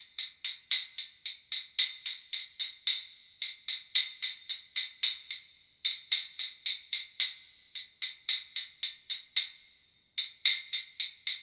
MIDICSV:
0, 0, Header, 1, 2, 480
1, 0, Start_track
1, 0, Tempo, 541028
1, 161, Time_signature, 4, 2, 24, 8
1, 10140, End_track
2, 0, Start_track
2, 0, Title_t, "Drums"
2, 164, Note_on_c, 9, 54, 48
2, 253, Note_off_c, 9, 54, 0
2, 395, Note_on_c, 9, 54, 52
2, 484, Note_off_c, 9, 54, 0
2, 633, Note_on_c, 9, 54, 92
2, 722, Note_off_c, 9, 54, 0
2, 872, Note_on_c, 9, 54, 32
2, 961, Note_off_c, 9, 54, 0
2, 1115, Note_on_c, 9, 54, 32
2, 1204, Note_off_c, 9, 54, 0
2, 1348, Note_on_c, 9, 54, 49
2, 1436, Note_off_c, 9, 54, 0
2, 1586, Note_on_c, 9, 54, 85
2, 1674, Note_off_c, 9, 54, 0
2, 1826, Note_on_c, 9, 54, 50
2, 1915, Note_off_c, 9, 54, 0
2, 2068, Note_on_c, 9, 54, 46
2, 2156, Note_off_c, 9, 54, 0
2, 2304, Note_on_c, 9, 54, 48
2, 2393, Note_off_c, 9, 54, 0
2, 2547, Note_on_c, 9, 54, 96
2, 2636, Note_off_c, 9, 54, 0
2, 3033, Note_on_c, 9, 54, 36
2, 3122, Note_off_c, 9, 54, 0
2, 3268, Note_on_c, 9, 54, 52
2, 3356, Note_off_c, 9, 54, 0
2, 3506, Note_on_c, 9, 54, 83
2, 3595, Note_off_c, 9, 54, 0
2, 3748, Note_on_c, 9, 54, 47
2, 3837, Note_off_c, 9, 54, 0
2, 3988, Note_on_c, 9, 54, 50
2, 4076, Note_off_c, 9, 54, 0
2, 4224, Note_on_c, 9, 54, 50
2, 4313, Note_off_c, 9, 54, 0
2, 4464, Note_on_c, 9, 54, 92
2, 4552, Note_off_c, 9, 54, 0
2, 4707, Note_on_c, 9, 54, 36
2, 4796, Note_off_c, 9, 54, 0
2, 5188, Note_on_c, 9, 54, 49
2, 5276, Note_off_c, 9, 54, 0
2, 5427, Note_on_c, 9, 54, 84
2, 5515, Note_off_c, 9, 54, 0
2, 5670, Note_on_c, 9, 54, 45
2, 5759, Note_off_c, 9, 54, 0
2, 5909, Note_on_c, 9, 54, 41
2, 5997, Note_off_c, 9, 54, 0
2, 6147, Note_on_c, 9, 54, 42
2, 6236, Note_off_c, 9, 54, 0
2, 6387, Note_on_c, 9, 54, 82
2, 6476, Note_off_c, 9, 54, 0
2, 6878, Note_on_c, 9, 54, 26
2, 6967, Note_off_c, 9, 54, 0
2, 7116, Note_on_c, 9, 54, 43
2, 7205, Note_off_c, 9, 54, 0
2, 7353, Note_on_c, 9, 54, 68
2, 7442, Note_off_c, 9, 54, 0
2, 7595, Note_on_c, 9, 54, 41
2, 7684, Note_off_c, 9, 54, 0
2, 7834, Note_on_c, 9, 54, 41
2, 7923, Note_off_c, 9, 54, 0
2, 8073, Note_on_c, 9, 54, 44
2, 8162, Note_off_c, 9, 54, 0
2, 8307, Note_on_c, 9, 54, 85
2, 8396, Note_off_c, 9, 54, 0
2, 9030, Note_on_c, 9, 54, 44
2, 9119, Note_off_c, 9, 54, 0
2, 9275, Note_on_c, 9, 54, 68
2, 9363, Note_off_c, 9, 54, 0
2, 9518, Note_on_c, 9, 54, 42
2, 9607, Note_off_c, 9, 54, 0
2, 9758, Note_on_c, 9, 54, 41
2, 9847, Note_off_c, 9, 54, 0
2, 9999, Note_on_c, 9, 54, 41
2, 10087, Note_off_c, 9, 54, 0
2, 10140, End_track
0, 0, End_of_file